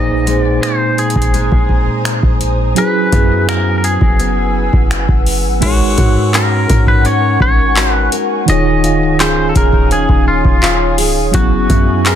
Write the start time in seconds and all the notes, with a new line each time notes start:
Already playing: A#1 A#2 A#3 D#4 G#4 C5 D#5 G#5 A#5 D#6
0.26 G#3 C4 D#4, closed hi-hat
0.43 D5
0.63 C5, finger snap, closed hi-hat
0.98 G#4, closed hi-hat
1.10 closed hi-hat
1.16 G#1, kick
1.22 closed hi-hat
1.34 G#3, closed hi-hat
1.52 A#1, kick
1.69 kick
2.05 finger snap, closed hi-hat
2.23 A#1, kick
2.41 closed hi-hat
2.75 F#3 C#4 E4 G#4 B4 F#5 E6, closed hi-hat
2.79 G#4 B4
3.12 F#2 B3 E4 G#4, kick, closed hi-hat
3.49 A#4, finger snap, closed hi-hat
3.78 A#4
3.84 G#4, closed hi-hat
4.01 F#1, kick
4.19 B3, closed hi-hat
4.73 F#1, kick
4.91 finger snap, closed hi-hat
5.09 F#1, kick
5.26 open hi-hat
5.44 G#1
5.60 G#1 G#3 D#4 F#4 A#4 F#5 G#5 C#6, kick, closed hi-hat, crash
5.64 A#4 C#5
5.98 G#2 F#4, kick, closed hi-hat
6.34 C#4 F#4 A#4, clap, closed hi-hat
6.69 G#2 A#4, kick, closed hi-hat
6.87 B4, kick
7.05 C#4 C#5, closed hi-hat
7.40 G#1 C#5, kick
7.76 F#4, clap, closed hi-hat
7.92 B4
8.12 A#4, closed hi-hat
8.46 D#1 D#3 D#4 F4 C#5 D#5 F5 D#6, closed hi-hat
8.50 G#4 C#5
8.84 F4, closed hi-hat
9.02 C#1
9.20 C#4 F4 G#4 C5, clap, closed hi-hat
9.49 A4
9.55 D#1 G#4 A#4, kick, closed hi-hat
9.73 kick
9.91 C#4 G#4, closed hi-hat
10.09 D#1, kick
10.28 F4
10.45 D#1, kick
10.62 F4, clap, closed hi-hat
10.98 C#1 G#4, open hi-hat
11.16 D#1
11.31 F#1 F#3 B3 C#4 E4 F#4 F#5 E6, kick, closed hi-hat
11.36 B3 G#4
11.69 F#2 E4, kick, closed hi-hat
12.05 B3 E4 G#4 A#4, clap, closed hi-hat